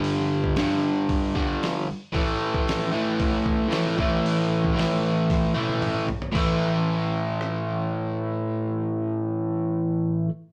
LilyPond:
<<
  \new Staff \with { instrumentName = "Overdriven electric guitar" } { \clef bass \time 4/4 \key g \lydian \tempo 4 = 114 <g, d g>4 <g, d g>4. <g, d g>4 r8 | <a, e a>4. <a, e a>4. <a, e a>8 <a, e a>8~ | <a, e a>4 <a, e a>4. <a, e a>4 r8 | <a, e a>1~ |
<a, e a>1 | }
  \new DrumStaff \with { instrumentName = "Drums" } \drummode { \time 4/4 hho16 sn8 bd16 <hho sn>4 <hho bd>8 bd8 <hho sn>4 | <hho bd>8. bd16 <hho sn>4 <hho bd>8 bd8 <hho sn>16 sn16 bd8 | hho8. bd16 <hho sn>4 <hho bd sn>8 tommh16 tommh16 <hho toml>8 tomfh16 tomfh16 | <cymc bd>4 r4 ss4 r4 |
r4 r4 r4 r4 | }
>>